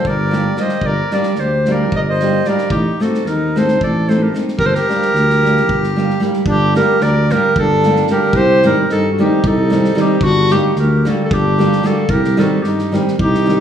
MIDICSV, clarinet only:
0, 0, Header, 1, 2, 480
1, 0, Start_track
1, 0, Key_signature, -2, "minor"
1, 0, Tempo, 536673
1, 736, Time_signature, 7, 3, 24, 8
1, 12166, End_track
2, 0, Start_track
2, 0, Title_t, "Clarinet"
2, 0, Program_c, 0, 71
2, 64, Note_on_c, 0, 74, 105
2, 544, Note_on_c, 0, 75, 100
2, 557, Note_off_c, 0, 74, 0
2, 767, Note_on_c, 0, 74, 124
2, 781, Note_off_c, 0, 75, 0
2, 1016, Note_off_c, 0, 74, 0
2, 1021, Note_on_c, 0, 74, 92
2, 1252, Note_on_c, 0, 72, 89
2, 1265, Note_off_c, 0, 74, 0
2, 1536, Note_on_c, 0, 74, 92
2, 1550, Note_off_c, 0, 72, 0
2, 1754, Note_on_c, 0, 75, 112
2, 1767, Note_off_c, 0, 74, 0
2, 1785, Note_on_c, 0, 74, 74
2, 1798, Note_off_c, 0, 75, 0
2, 1878, Note_on_c, 0, 75, 101
2, 1891, Note_off_c, 0, 74, 0
2, 2205, Note_on_c, 0, 74, 92
2, 2219, Note_off_c, 0, 75, 0
2, 2421, Note_off_c, 0, 74, 0
2, 2428, Note_on_c, 0, 67, 94
2, 2701, Note_on_c, 0, 69, 87
2, 2715, Note_off_c, 0, 67, 0
2, 2926, Note_on_c, 0, 70, 84
2, 2939, Note_off_c, 0, 69, 0
2, 3203, Note_on_c, 0, 72, 95
2, 3216, Note_off_c, 0, 70, 0
2, 3417, Note_off_c, 0, 72, 0
2, 3432, Note_on_c, 0, 74, 90
2, 3660, Note_on_c, 0, 72, 81
2, 3673, Note_off_c, 0, 74, 0
2, 3786, Note_on_c, 0, 70, 69
2, 3800, Note_off_c, 0, 72, 0
2, 3886, Note_off_c, 0, 70, 0
2, 4110, Note_on_c, 0, 70, 126
2, 4171, Note_on_c, 0, 72, 98
2, 4185, Note_off_c, 0, 70, 0
2, 4249, Note_on_c, 0, 70, 118
2, 4263, Note_off_c, 0, 72, 0
2, 5563, Note_off_c, 0, 70, 0
2, 5799, Note_on_c, 0, 67, 110
2, 6036, Note_off_c, 0, 67, 0
2, 6051, Note_on_c, 0, 70, 112
2, 6285, Note_on_c, 0, 74, 110
2, 6298, Note_off_c, 0, 70, 0
2, 6549, Note_on_c, 0, 70, 105
2, 6562, Note_off_c, 0, 74, 0
2, 6769, Note_off_c, 0, 70, 0
2, 6789, Note_on_c, 0, 69, 105
2, 7214, Note_off_c, 0, 69, 0
2, 7260, Note_on_c, 0, 70, 108
2, 7486, Note_on_c, 0, 72, 127
2, 7500, Note_off_c, 0, 70, 0
2, 7736, Note_off_c, 0, 72, 0
2, 7752, Note_on_c, 0, 70, 102
2, 7948, Note_off_c, 0, 70, 0
2, 7980, Note_on_c, 0, 69, 112
2, 8164, Note_off_c, 0, 69, 0
2, 8164, Note_on_c, 0, 69, 67
2, 8232, Note_on_c, 0, 67, 93
2, 8245, Note_off_c, 0, 69, 0
2, 8476, Note_on_c, 0, 69, 111
2, 8490, Note_off_c, 0, 67, 0
2, 8955, Note_on_c, 0, 67, 100
2, 8969, Note_off_c, 0, 69, 0
2, 9158, Note_on_c, 0, 66, 126
2, 9171, Note_off_c, 0, 67, 0
2, 9412, Note_on_c, 0, 67, 104
2, 9426, Note_off_c, 0, 66, 0
2, 9633, Note_off_c, 0, 67, 0
2, 9658, Note_on_c, 0, 70, 78
2, 9910, Note_on_c, 0, 69, 80
2, 9924, Note_off_c, 0, 70, 0
2, 10054, Note_off_c, 0, 69, 0
2, 10060, Note_on_c, 0, 69, 96
2, 10141, Note_on_c, 0, 67, 118
2, 10155, Note_off_c, 0, 69, 0
2, 10616, Note_on_c, 0, 69, 97
2, 10630, Note_off_c, 0, 67, 0
2, 10821, Note_on_c, 0, 70, 115
2, 10835, Note_off_c, 0, 69, 0
2, 11085, Note_on_c, 0, 69, 93
2, 11098, Note_off_c, 0, 70, 0
2, 11296, Note_on_c, 0, 67, 74
2, 11310, Note_off_c, 0, 69, 0
2, 11568, Note_off_c, 0, 67, 0
2, 11812, Note_on_c, 0, 67, 104
2, 12166, Note_off_c, 0, 67, 0
2, 12166, End_track
0, 0, End_of_file